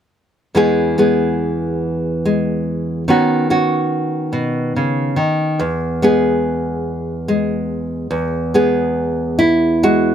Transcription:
0, 0, Header, 1, 2, 480
1, 0, Start_track
1, 0, Key_signature, 4, "major"
1, 0, Tempo, 854701
1, 300, Time_signature, 6, 3, 24, 8
1, 1257, Tempo, 837989
1, 4617, Tempo, 859599
1, 5758, End_track
2, 0, Start_track
2, 0, Title_t, "Nylon-string guitar"
2, 0, Program_c, 0, 24
2, 306, Note_on_c, 0, 40, 52
2, 309, Note_on_c, 0, 52, 44
2, 313, Note_on_c, 0, 56, 42
2, 317, Note_on_c, 0, 59, 47
2, 321, Note_on_c, 0, 68, 49
2, 543, Note_off_c, 0, 56, 0
2, 550, Note_off_c, 0, 59, 0
2, 550, Note_off_c, 0, 68, 0
2, 550, Note_on_c, 0, 56, 45
2, 552, Note_on_c, 0, 59, 42
2, 556, Note_on_c, 0, 68, 48
2, 1259, Note_off_c, 0, 56, 0
2, 1266, Note_on_c, 0, 56, 43
2, 1713, Note_off_c, 0, 52, 0
2, 1713, Note_off_c, 0, 56, 0
2, 1716, Note_off_c, 0, 68, 0
2, 1739, Note_on_c, 0, 51, 57
2, 1741, Note_off_c, 0, 40, 0
2, 1742, Note_off_c, 0, 59, 0
2, 1742, Note_on_c, 0, 59, 48
2, 1744, Note_on_c, 0, 61, 46
2, 1751, Note_on_c, 0, 66, 51
2, 1974, Note_off_c, 0, 61, 0
2, 1978, Note_off_c, 0, 66, 0
2, 1981, Note_on_c, 0, 61, 42
2, 1985, Note_on_c, 0, 66, 49
2, 2453, Note_on_c, 0, 47, 49
2, 2694, Note_off_c, 0, 47, 0
2, 2704, Note_on_c, 0, 49, 51
2, 2926, Note_off_c, 0, 51, 0
2, 2932, Note_on_c, 0, 51, 52
2, 2940, Note_off_c, 0, 49, 0
2, 3150, Note_off_c, 0, 61, 0
2, 3152, Note_off_c, 0, 66, 0
2, 3175, Note_off_c, 0, 51, 0
2, 3180, Note_on_c, 0, 40, 59
2, 3423, Note_off_c, 0, 59, 0
2, 3425, Note_on_c, 0, 56, 48
2, 3429, Note_on_c, 0, 59, 50
2, 3437, Note_on_c, 0, 68, 50
2, 4145, Note_off_c, 0, 56, 0
2, 4147, Note_on_c, 0, 56, 51
2, 4616, Note_off_c, 0, 40, 0
2, 4618, Note_on_c, 0, 40, 60
2, 4858, Note_off_c, 0, 59, 0
2, 4859, Note_off_c, 0, 56, 0
2, 4862, Note_on_c, 0, 56, 45
2, 4865, Note_on_c, 0, 59, 47
2, 4866, Note_off_c, 0, 68, 0
2, 4869, Note_on_c, 0, 68, 52
2, 5331, Note_off_c, 0, 68, 0
2, 5333, Note_on_c, 0, 64, 73
2, 5575, Note_off_c, 0, 56, 0
2, 5582, Note_off_c, 0, 59, 0
2, 5582, Note_on_c, 0, 56, 48
2, 5584, Note_on_c, 0, 66, 71
2, 5758, Note_off_c, 0, 40, 0
2, 5758, Note_off_c, 0, 56, 0
2, 5758, Note_off_c, 0, 64, 0
2, 5758, Note_off_c, 0, 66, 0
2, 5758, End_track
0, 0, End_of_file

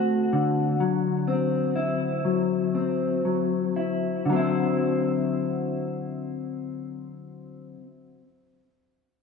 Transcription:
0, 0, Header, 1, 2, 480
1, 0, Start_track
1, 0, Tempo, 949367
1, 162, Time_signature, 4, 2, 24, 8
1, 643, Tempo, 990099
1, 1603, Tempo, 1050788
1, 4333, End_track
2, 0, Start_track
2, 0, Title_t, "Clean electric guitar"
2, 0, Program_c, 0, 27
2, 0, Note_on_c, 0, 50, 70
2, 0, Note_on_c, 0, 57, 50
2, 0, Note_on_c, 0, 60, 49
2, 0, Note_on_c, 0, 66, 57
2, 159, Note_off_c, 0, 50, 0
2, 165, Note_on_c, 0, 50, 67
2, 403, Note_off_c, 0, 57, 0
2, 405, Note_on_c, 0, 54, 49
2, 420, Note_off_c, 0, 60, 0
2, 645, Note_on_c, 0, 60, 50
2, 660, Note_off_c, 0, 66, 0
2, 878, Note_on_c, 0, 64, 56
2, 1113, Note_off_c, 0, 54, 0
2, 1115, Note_on_c, 0, 54, 57
2, 1356, Note_off_c, 0, 60, 0
2, 1358, Note_on_c, 0, 60, 48
2, 1600, Note_off_c, 0, 54, 0
2, 1602, Note_on_c, 0, 54, 45
2, 1835, Note_off_c, 0, 64, 0
2, 1837, Note_on_c, 0, 64, 54
2, 2055, Note_off_c, 0, 50, 0
2, 2061, Note_on_c, 0, 50, 64
2, 2078, Note_off_c, 0, 54, 0
2, 2080, Note_on_c, 0, 54, 71
2, 2092, Note_off_c, 0, 60, 0
2, 2094, Note_on_c, 0, 60, 61
2, 2108, Note_off_c, 0, 64, 0
2, 2110, Note_on_c, 0, 64, 72
2, 3659, Note_off_c, 0, 50, 0
2, 3679, Note_off_c, 0, 54, 0
2, 3693, Note_off_c, 0, 60, 0
2, 3709, Note_off_c, 0, 64, 0
2, 4333, End_track
0, 0, End_of_file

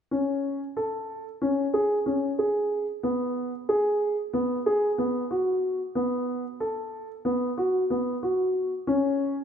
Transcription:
0, 0, Header, 1, 2, 480
1, 0, Start_track
1, 0, Key_signature, 3, "major"
1, 0, Tempo, 648649
1, 84, Time_signature, 9, 3, 24, 8
1, 6987, End_track
2, 0, Start_track
2, 0, Title_t, "Grand piano"
2, 0, Program_c, 0, 0
2, 84, Note_on_c, 0, 61, 47
2, 430, Note_off_c, 0, 61, 0
2, 567, Note_on_c, 0, 69, 51
2, 912, Note_off_c, 0, 69, 0
2, 1048, Note_on_c, 0, 61, 49
2, 1220, Note_off_c, 0, 61, 0
2, 1285, Note_on_c, 0, 68, 47
2, 1458, Note_off_c, 0, 68, 0
2, 1525, Note_on_c, 0, 61, 46
2, 1698, Note_off_c, 0, 61, 0
2, 1766, Note_on_c, 0, 68, 40
2, 2111, Note_off_c, 0, 68, 0
2, 2245, Note_on_c, 0, 59, 50
2, 2591, Note_off_c, 0, 59, 0
2, 2729, Note_on_c, 0, 68, 49
2, 3074, Note_off_c, 0, 68, 0
2, 3208, Note_on_c, 0, 59, 55
2, 3380, Note_off_c, 0, 59, 0
2, 3450, Note_on_c, 0, 68, 49
2, 3621, Note_off_c, 0, 68, 0
2, 3687, Note_on_c, 0, 59, 50
2, 3859, Note_off_c, 0, 59, 0
2, 3927, Note_on_c, 0, 66, 43
2, 4272, Note_off_c, 0, 66, 0
2, 4405, Note_on_c, 0, 59, 52
2, 4751, Note_off_c, 0, 59, 0
2, 4887, Note_on_c, 0, 69, 49
2, 5232, Note_off_c, 0, 69, 0
2, 5365, Note_on_c, 0, 59, 58
2, 5538, Note_off_c, 0, 59, 0
2, 5606, Note_on_c, 0, 66, 50
2, 5779, Note_off_c, 0, 66, 0
2, 5848, Note_on_c, 0, 59, 51
2, 6020, Note_off_c, 0, 59, 0
2, 6089, Note_on_c, 0, 66, 43
2, 6433, Note_off_c, 0, 66, 0
2, 6566, Note_on_c, 0, 61, 55
2, 6911, Note_off_c, 0, 61, 0
2, 6987, End_track
0, 0, End_of_file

